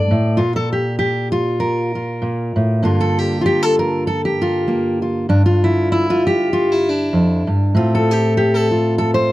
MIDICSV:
0, 0, Header, 1, 2, 480
1, 0, Start_track
1, 0, Tempo, 614125
1, 295, Time_signature, 4, 2, 24, 8
1, 7286, End_track
2, 0, Start_track
2, 0, Title_t, "Steel-string acoustic guitar"
2, 0, Program_c, 0, 25
2, 0, Note_on_c, 0, 43, 57
2, 0, Note_on_c, 0, 57, 48
2, 0, Note_on_c, 0, 74, 95
2, 84, Note_off_c, 0, 43, 0
2, 84, Note_on_c, 0, 45, 64
2, 276, Note_off_c, 0, 57, 0
2, 289, Note_on_c, 0, 65, 83
2, 292, Note_off_c, 0, 74, 0
2, 297, Note_off_c, 0, 45, 0
2, 299, Note_on_c, 0, 46, 79
2, 425, Note_off_c, 0, 65, 0
2, 437, Note_on_c, 0, 69, 93
2, 564, Note_off_c, 0, 69, 0
2, 567, Note_on_c, 0, 67, 75
2, 762, Note_off_c, 0, 67, 0
2, 771, Note_on_c, 0, 67, 86
2, 1027, Note_off_c, 0, 67, 0
2, 1031, Note_on_c, 0, 65, 83
2, 1249, Note_on_c, 0, 70, 80
2, 1515, Note_off_c, 0, 65, 0
2, 1526, Note_on_c, 0, 65, 47
2, 1724, Note_off_c, 0, 46, 0
2, 1733, Note_on_c, 0, 46, 61
2, 1996, Note_off_c, 0, 46, 0
2, 1999, Note_on_c, 0, 45, 62
2, 2208, Note_on_c, 0, 43, 74
2, 2211, Note_off_c, 0, 70, 0
2, 2211, Note_on_c, 0, 50, 52
2, 2214, Note_off_c, 0, 45, 0
2, 2215, Note_on_c, 0, 58, 47
2, 2223, Note_off_c, 0, 65, 0
2, 2226, Note_on_c, 0, 65, 80
2, 2349, Note_on_c, 0, 69, 97
2, 2490, Note_off_c, 0, 69, 0
2, 2490, Note_on_c, 0, 67, 83
2, 2658, Note_off_c, 0, 65, 0
2, 2667, Note_on_c, 0, 65, 66
2, 2693, Note_off_c, 0, 67, 0
2, 2702, Note_on_c, 0, 67, 103
2, 2834, Note_off_c, 0, 67, 0
2, 2834, Note_on_c, 0, 69, 99
2, 2959, Note_off_c, 0, 69, 0
2, 2962, Note_on_c, 0, 70, 88
2, 3174, Note_off_c, 0, 65, 0
2, 3175, Note_off_c, 0, 70, 0
2, 3182, Note_on_c, 0, 69, 88
2, 3310, Note_off_c, 0, 69, 0
2, 3322, Note_on_c, 0, 67, 77
2, 3451, Note_on_c, 0, 65, 85
2, 3646, Note_off_c, 0, 58, 0
2, 3655, Note_on_c, 0, 58, 44
2, 3915, Note_off_c, 0, 65, 0
2, 3924, Note_on_c, 0, 65, 49
2, 3927, Note_off_c, 0, 67, 0
2, 4105, Note_off_c, 0, 43, 0
2, 4109, Note_off_c, 0, 58, 0
2, 4134, Note_on_c, 0, 43, 76
2, 4135, Note_off_c, 0, 65, 0
2, 4138, Note_on_c, 0, 62, 81
2, 4262, Note_off_c, 0, 62, 0
2, 4265, Note_on_c, 0, 65, 86
2, 4407, Note_on_c, 0, 64, 87
2, 4618, Note_off_c, 0, 64, 0
2, 4626, Note_on_c, 0, 64, 100
2, 4747, Note_off_c, 0, 65, 0
2, 4768, Note_on_c, 0, 65, 97
2, 4886, Note_off_c, 0, 64, 0
2, 4898, Note_on_c, 0, 67, 103
2, 5094, Note_off_c, 0, 65, 0
2, 5103, Note_on_c, 0, 65, 83
2, 5250, Note_off_c, 0, 67, 0
2, 5250, Note_on_c, 0, 64, 89
2, 5384, Note_off_c, 0, 65, 0
2, 5384, Note_on_c, 0, 62, 82
2, 5569, Note_off_c, 0, 43, 0
2, 5572, Note_on_c, 0, 41, 60
2, 5837, Note_off_c, 0, 41, 0
2, 5840, Note_on_c, 0, 43, 66
2, 5853, Note_off_c, 0, 64, 0
2, 6054, Note_on_c, 0, 45, 81
2, 6055, Note_off_c, 0, 50, 0
2, 6056, Note_off_c, 0, 43, 0
2, 6067, Note_off_c, 0, 62, 0
2, 6068, Note_on_c, 0, 60, 54
2, 6070, Note_on_c, 0, 65, 91
2, 6211, Note_on_c, 0, 69, 90
2, 6338, Note_off_c, 0, 65, 0
2, 6338, Note_on_c, 0, 67, 95
2, 6534, Note_off_c, 0, 67, 0
2, 6544, Note_on_c, 0, 67, 94
2, 6666, Note_off_c, 0, 69, 0
2, 6675, Note_on_c, 0, 69, 101
2, 6806, Note_off_c, 0, 67, 0
2, 6809, Note_on_c, 0, 65, 53
2, 7012, Note_off_c, 0, 69, 0
2, 7021, Note_on_c, 0, 69, 95
2, 7143, Note_off_c, 0, 69, 0
2, 7146, Note_on_c, 0, 72, 99
2, 7283, Note_off_c, 0, 72, 0
2, 7286, Note_off_c, 0, 45, 0
2, 7286, Note_off_c, 0, 60, 0
2, 7286, Note_off_c, 0, 65, 0
2, 7286, End_track
0, 0, End_of_file